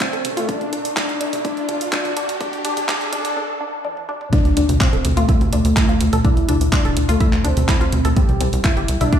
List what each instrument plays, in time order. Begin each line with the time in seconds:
Already playing: synth drone D3 A3, riser
0.01 analog synth lead C4, synth arpeggio sound F4, kick, clap, closed hi-hat
0.13 synth arpeggio sound A4, closed hi-hat
0.25 closed hi-hat, mid tom
0.37 analog synth lead A3, synth arpeggio sound F4, closed hi-hat
0.49 synth arpeggio sound D4, analog synth lead D4, kick, closed hi-hat
0.61 closed hi-hat, mid tom
0.73 synth arpeggio sound D4, closed hi-hat
0.85 closed hi-hat
0.97 analog synth lead D4, synth arpeggio sound D4, kick, clap, closed hi-hat, mid tom
1.09 closed hi-hat
1.21 synth arpeggio sound D4, closed hi-hat
1.33 closed hi-hat, mid tom
1.45 analog synth lead D4, synth arpeggio sound D4, kick, closed hi-hat
1.57 closed hi-hat
1.69 synth arpeggio sound D4, closed hi-hat, mid tom
1.81 closed hi-hat
1.93 analog synth lead D4, synth arpeggio sound D4, kick, clap, closed hi-hat
2.05 closed hi-hat, mid tom
2.17 synth arpeggio sound D4, closed hi-hat
2.29 closed hi-hat
2.41 synth arpeggio sound D4, analog synth lead D4, kick, closed hi-hat, mid tom
2.53 closed hi-hat
2.65 analog synth lead D4, synth arpeggio sound D4, closed hi-hat
2.77 closed hi-hat, mid tom
2.89 synth arpeggio sound D4, analog synth lead D4, kick, clap, closed hi-hat
3.01 closed hi-hat
3.13 synth arpeggio sound D4, analog synth lead D4, closed hi-hat, mid tom
3.25 closed hi-hat
3.37 synth arpeggio sound D4
3.61 synth arpeggio sound D4
3.85 synth arpeggio sound D4, high tom
3.97 high tom
4.09 synth arpeggio sound D4, mid tom
4.21 mid tom
4.33 analog synth lead D4, synth arpeggio sound D4, kick, closed hi-hat, mid tom, impact
4.45 analog synth bass D2, closed hi-hat
4.57 analog synth bass D2, synth arpeggio sound D4, closed hi-hat
4.69 analog synth bass D2, closed hi-hat, mid tom
4.81 analog synth lead C4, synth arpeggio sound F4, kick, clap, closed hi-hat
4.93 analog synth bass D1, synth arpeggio sound A4, closed hi-hat
5.05 analog synth bass D2, closed hi-hat, mid tom
5.17 analog synth bass D2, analog synth lead A3, synth arpeggio sound F4, closed hi-hat
5.29 synth arpeggio sound E4, kick, closed hi-hat
5.41 analog synth bass D2, closed hi-hat, mid tom
5.53 analog synth bass D2, analog synth lead A3, synth arpeggio sound D4, closed hi-hat
5.65 analog synth bass D2, closed hi-hat
5.77 synth arpeggio sound E4, kick, clap, closed hi-hat, mid tom
5.89 analog synth bass D2, synth arpeggio sound F4, closed hi-hat
6.01 analog synth bass D2, closed hi-hat
6.13 analog synth bass D2, synth arpeggio sound A4, closed hi-hat, mid tom
6.25 synth arpeggio sound D4, analog synth lead E4, kick, closed hi-hat
6.37 analog synth bass D2, closed hi-hat
6.49 analog synth bass D2, synth arpeggio sound D4, closed hi-hat, mid tom
6.61 analog synth bass D2, closed hi-hat
6.73 analog synth lead D4, synth arpeggio sound F4, kick, clap, closed hi-hat
6.85 analog synth bass D1, synth arpeggio sound A4, closed hi-hat, mid tom
6.97 analog synth bass D2, closed hi-hat
7.09 analog synth bass D2, analog synth lead A3, synth arpeggio sound F4, closed hi-hat
7.20 synth arpeggio sound E4, kick, closed hi-hat, mid tom
7.33 analog synth bass D2, clap, closed hi-hat
7.44 analog synth bass D2, analog synth lead C4, synth arpeggio sound D4, closed hi-hat
7.57 analog synth bass D2, closed hi-hat, mid tom
7.69 synth arpeggio sound E4, kick, clap, closed hi-hat
7.81 analog synth bass D2, synth arpeggio sound F4, closed hi-hat
7.92 analog synth bass D2, closed hi-hat, mid tom
8.05 analog synth bass D2, synth arpeggio sound A4, closed hi-hat
8.16 synth arpeggio sound C4, analog synth lead G4, kick, closed hi-hat
8.29 analog synth bass C2, closed hi-hat, mid tom
8.41 analog synth bass C2, synth arpeggio sound C4, closed hi-hat
8.53 analog synth bass C2, closed hi-hat
8.64 synth arpeggio sound E4, analog synth lead E4, kick, clap, closed hi-hat, mid tom
8.77 analog synth bass G1, synth arpeggio sound G4, closed hi-hat
8.88 analog synth bass C2, closed hi-hat
9.01 analog synth bass C2, analog synth lead D4, synth arpeggio sound E4, closed hi-hat, mid tom
9.12 synth arpeggio sound D4, kick, closed hi-hat